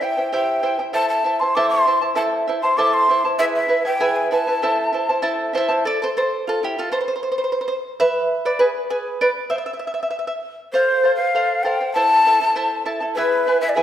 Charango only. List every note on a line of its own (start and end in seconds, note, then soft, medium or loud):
0.01 0.17 E4 medium
0.01 0.17 C5 medium
0.01 0.17 E5 medium
0.01 0.16 G5 medium
0.17 0.32 E4 soft
0.17 0.32 C5 soft
0.17 0.33 G5 soft
0.32 0.62 E4 medium
0.32 0.64 G4 medium
0.32 0.62 C5 medium
0.32 0.62 E5 medium
0.32 0.62 G5 medium
0.63 0.79 E4 medium
0.63 0.78 C5 medium
0.63 0.79 E5 medium
0.63 0.78 G5 medium
0.79 0.93 E4 soft
0.79 0.93 C5 soft
0.79 0.93 G5 medium
0.93 1.24 E4 medium
0.93 1.25 A4 medium
0.93 1.24 C5 medium
0.93 1.23 E5 medium
0.93 1.25 A5 medium
1.24 1.40 E4 medium
1.24 1.41 C5 medium
1.24 1.40 E5 medium
1.24 1.40 A5 medium
1.41 1.56 E4 soft
1.41 1.55 C5 soft
1.41 1.55 A5 medium
1.57 1.86 E4 medium
1.57 1.87 A4 medium
1.57 1.87 C5 medium
1.57 1.85 E5 medium
1.57 1.86 A5 medium
1.86 2.02 E4 medium
1.86 2.01 C5 medium
1.86 2.02 E5 medium
1.86 2.00 A5 medium
2.01 2.14 E4 soft
2.01 2.15 C5 medium
2.01 2.15 A5 medium
2.15 2.47 E4 medium
2.15 2.47 A4 medium
2.15 2.47 C5 medium
2.15 2.46 E5 medium
2.15 2.47 A5 medium
2.47 2.63 E4 medium
2.47 2.63 C5 medium
2.47 2.63 E5 medium
2.47 2.62 A5 medium
2.63 2.77 E4 soft
2.63 2.78 C5 soft
2.63 2.78 A5 medium
2.78 3.08 E4 medium
2.78 3.08 A4 medium
2.78 3.09 C5 medium
2.78 3.08 E5 medium
2.78 3.09 A5 medium
3.09 3.24 E4 medium
3.09 3.25 C5 medium
3.09 3.24 E5 medium
3.09 3.23 A5 medium
3.25 3.38 E4 soft
3.25 3.39 C5 soft
3.25 3.39 A5 medium
3.39 3.67 E4 medium
3.39 3.69 G#4 medium
3.39 3.68 B4 medium
3.39 3.67 E5 medium
3.39 3.68 G#5 medium
3.68 3.84 E4 medium
3.68 3.84 B4 medium
3.68 3.84 E5 medium
3.68 3.84 G#5 medium
3.85 4.00 E4 soft
3.85 4.00 B4 soft
3.85 4.00 G#5 medium
4.00 4.30 E4 medium
4.00 4.30 G#4 medium
4.00 4.31 B4 medium
4.00 4.30 E5 medium
4.00 4.31 G#5 medium
4.31 4.46 E4 medium
4.31 4.46 B4 medium
4.31 4.46 E5 medium
4.31 4.46 G#5 medium
4.47 4.62 E4 soft
4.47 4.62 B4 soft
4.47 4.61 G#5 medium
4.62 4.92 E4 medium
4.62 4.92 A4 medium
4.62 4.92 C5 medium
4.62 4.91 E5 medium
4.62 4.92 A5 medium
4.92 5.07 E4 medium
4.92 5.08 C5 medium
4.92 5.07 E5 medium
4.92 5.08 A5 medium
5.09 5.22 E4 soft
5.09 5.22 C5 medium
5.09 5.22 A5 medium
5.22 5.53 E4 medium
5.22 5.52 A4 medium
5.22 5.53 C5 medium
5.22 5.52 E5 medium
5.22 5.53 A5 loud
5.53 5.68 E4 medium
5.53 5.68 C5 medium
5.53 5.56 E5 medium
5.53 5.86 E5 loud
5.53 5.67 A5 medium
5.68 5.84 E4 medium
5.68 5.84 C5 medium
5.68 5.83 A5 medium
5.85 5.98 A4 medium
5.85 6.00 D5 medium
6.02 6.07 A4 medium
6.02 6.09 C5 medium
6.17 6.43 A4 medium
6.17 6.44 C5 medium
6.47 6.60 F4 medium
6.47 6.62 A4 medium
6.63 6.75 E4 medium
6.63 6.77 G4 medium
6.79 6.91 F4 medium
6.79 6.90 A4 medium
6.92 6.98 A4 medium
6.92 6.98 C5 medium
7.01 7.06 C5 medium
7.08 7.13 C5 medium
7.16 7.21 C5 soft
7.23 7.28 C5 medium
7.32 7.37 C5 soft
7.38 7.43 C5 medium
7.44 7.50 C5 soft
7.52 7.58 C5 medium
7.61 7.66 C5 medium
7.68 7.73 C5 medium
8.00 8.41 B4 medium
8.00 8.45 E5 medium
8.45 8.58 B4 medium
8.45 8.59 D5 medium
8.59 8.68 G#4 medium
8.59 8.67 B4 medium
8.90 9.18 G#4 medium
8.90 9.20 B4 medium
9.21 9.29 B4 medium
9.21 9.29 D5 medium
9.50 9.57 C5 medium
9.50 9.56 E5 medium
9.58 9.64 E5 medium
9.66 9.72 E5 medium
9.73 9.78 E5 soft
9.79 9.86 E5 medium
9.87 9.93 E5 soft
9.94 10.01 E5 medium
10.03 10.09 E5 soft
10.11 10.17 E5 medium
10.19 10.25 E5 soft
10.27 10.33 E5 medium
10.73 11.02 A4 medium
10.73 11.03 C5 medium
10.73 11.03 F5 medium
11.03 11.18 A4 soft
11.03 11.18 C5 medium
11.03 11.17 F5 medium
11.19 11.33 C5 soft
11.19 11.33 F5 soft
11.35 11.63 A4 medium
11.35 11.64 C5 medium
11.35 11.64 F5 medium
11.64 11.79 A4 medium
11.64 11.79 C5 medium
11.64 11.79 F5 medium
11.81 11.95 C5 soft
11.81 11.94 F5 soft
11.95 12.25 E4 medium
11.95 12.25 A4 medium
11.95 12.25 C5 medium
11.95 12.25 E5 medium
11.95 12.25 A5 medium
12.26 12.40 E4 medium
12.26 12.40 A4 medium
12.26 12.40 E5 medium
12.26 12.40 A5 medium
12.41 12.55 E4 soft
12.41 12.55 A4 soft
12.41 12.55 A5 soft
12.55 12.85 E4 medium
12.55 12.85 A4 medium
12.55 12.85 C5 medium
12.55 12.84 E5 medium
12.55 12.85 A5 medium
12.85 13.00 E4 medium
12.85 13.00 A4 medium
12.85 13.00 E5 medium
12.85 12.99 A5 medium
13.00 13.16 E4 soft
13.00 13.16 A4 soft
13.00 13.15 A5 medium
13.17 13.46 E4 medium
13.17 13.46 G#4 medium
13.17 13.47 B4 medium
13.17 13.46 E5 medium
13.17 13.47 G#5 medium
13.47 13.62 E4 medium
13.47 13.61 B4 medium
13.47 13.61 E5 medium
13.47 13.60 G#5 medium
13.61 13.76 E4 soft
13.61 13.76 B4 soft
13.61 13.76 G#5 medium
13.76 13.83 E4 medium
13.76 13.83 G#4 medium
13.76 13.83 B4 medium
13.76 13.83 E5 medium
13.76 13.83 G#5 loud